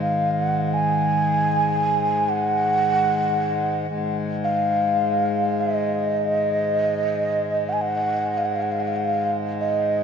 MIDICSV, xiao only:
0, 0, Header, 1, 2, 480
1, 0, Start_track
1, 0, Tempo, 500000
1, 9635, End_track
2, 0, Start_track
2, 0, Title_t, "Xiao"
2, 0, Program_c, 0, 77
2, 12, Note_on_c, 0, 77, 70
2, 298, Note_on_c, 0, 78, 84
2, 312, Note_off_c, 0, 77, 0
2, 706, Note_on_c, 0, 80, 84
2, 721, Note_off_c, 0, 78, 0
2, 2200, Note_on_c, 0, 78, 100
2, 2214, Note_off_c, 0, 80, 0
2, 4007, Note_off_c, 0, 78, 0
2, 4262, Note_on_c, 0, 77, 81
2, 5384, Note_on_c, 0, 75, 76
2, 5398, Note_off_c, 0, 77, 0
2, 7382, Note_on_c, 0, 78, 74
2, 7396, Note_off_c, 0, 75, 0
2, 7420, Note_on_c, 0, 80, 66
2, 7435, Note_off_c, 0, 78, 0
2, 7502, Note_on_c, 0, 78, 78
2, 7516, Note_off_c, 0, 80, 0
2, 8040, Note_on_c, 0, 77, 57
2, 8054, Note_off_c, 0, 78, 0
2, 8116, Note_on_c, 0, 78, 55
2, 8131, Note_off_c, 0, 77, 0
2, 8215, Note_on_c, 0, 77, 59
2, 8230, Note_off_c, 0, 78, 0
2, 8275, Note_on_c, 0, 78, 57
2, 8289, Note_off_c, 0, 77, 0
2, 8367, Note_on_c, 0, 77, 56
2, 8381, Note_off_c, 0, 78, 0
2, 8449, Note_on_c, 0, 78, 57
2, 8464, Note_off_c, 0, 77, 0
2, 8523, Note_on_c, 0, 77, 58
2, 8537, Note_off_c, 0, 78, 0
2, 8602, Note_on_c, 0, 78, 56
2, 8617, Note_off_c, 0, 77, 0
2, 8683, Note_on_c, 0, 77, 76
2, 8697, Note_off_c, 0, 78, 0
2, 8981, Note_off_c, 0, 77, 0
2, 9220, Note_on_c, 0, 75, 69
2, 9635, Note_off_c, 0, 75, 0
2, 9635, End_track
0, 0, End_of_file